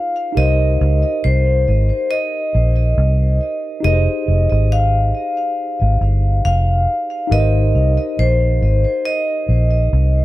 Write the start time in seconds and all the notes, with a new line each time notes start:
Already playing: D#4 F4 G#4 C5 F5
0.32 D#4 G4
0.37 C2 A#4 C5 D#5
0.81 C#2
1.24 C2 C5
1.68 G#1
2.11 D#5
2.55 A#1
2.98 C2
3.80 D#4 G4 D#5
3.84 F1 G#4 B4
3.93 C5
4.28 F1
4.52 G#1
4.72 F5
5.81 G#1
6.01 G1
6.45 F1 F5
7.27 G#1 D#4 G4
7.31 A#4 B4 D#5
7.40 C5
7.75 C2
8.19 A#1 C5
8.62 G#1
9.05 D#5
9.49 A#1
9.93 C2